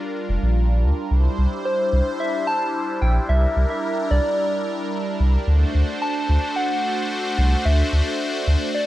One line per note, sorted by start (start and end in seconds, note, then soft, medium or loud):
0.00 1.07 G3 medium
0.00 1.07 D4 medium
0.00 1.07 F4 medium
0.00 1.07 A#4 medium
0.00 0.56 D5 loud
0.29 0.38 F1 medium
0.43 0.85 A#1 loud
0.84 0.92 D2 medium
1.11 1.28 C2 loud
1.11 5.43 G3 medium
1.11 8.87 D4 medium
1.11 5.43 E4 medium
1.11 3.27 C5 medium
1.38 1.47 C2 medium
1.65 2.22 C5 loud
1.93 2.01 C2 loud
2.20 2.47 E5 loud
2.47 2.98 A5 loud
3.02 3.19 A#1 loud
3.02 3.14 G5 loud
3.29 3.46 C2 loud
3.29 5.45 A#4 medium
3.29 3.67 E5 loud
3.56 3.65 C2 medium
3.70 4.08 E5 loud
4.11 4.19 C2 loud
4.11 5.16 D5 loud
5.20 5.37 C2 medium
5.47 5.64 D2 loud
5.47 8.87 A3 medium
5.47 8.87 F#4 medium
5.47 8.87 C5 medium
5.75 5.83 D2 medium
6.02 6.58 A5 loud
6.29 6.38 D2 loud
6.56 7.67 F#5 loud
7.38 7.55 C2 loud
7.65 7.83 D2 loud
7.65 8.47 E5 medium
7.93 8.01 D2 medium
8.47 8.56 D2 loud
8.74 8.87 D5 loud